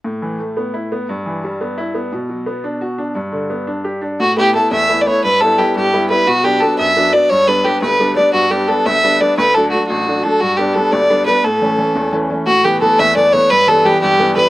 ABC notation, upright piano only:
X:1
M:6/8
L:1/8
Q:3/8=116
K:Amix
V:1 name="Upright piano"
A,, E, A, B, E B, | G,, E, G, B, E B, | B,, F, B, D F D | G,, D, B, D G D |
A,, [A,B,E] [A,B,E] E,, [A,B,E] [A,B,E] | G,, [G,B,E] [G,B,E] G,, [G,B,E] [G,B,E] | B,, [F,B,D] [F,B,D] F,, [F,B,D] [F,B,D] | G,, [G,B,D] [G,B,D] D,, [G,B,D] [G,B,D] |
G,, [G,B,D] [G,B,D] D,, [G,B,D] [G,B,D] | D,, [F,A,D] [F,A,D] A,,, [F,A,D] [F,A,D] | G,, [G,B,D] [G,B,D] D,, [G,B,D] [G,B,D] | A,, [E,A,C] [E,A,C] E,, [E,A,C] [E,A,C] |
A,, [E,A,B,] [E,A,B,] E,, [E,A,B,] [E,A,B,] | G,, [E,G,B,] [E,G,B,] G,, [E,G,B,] [E,G,B,] |]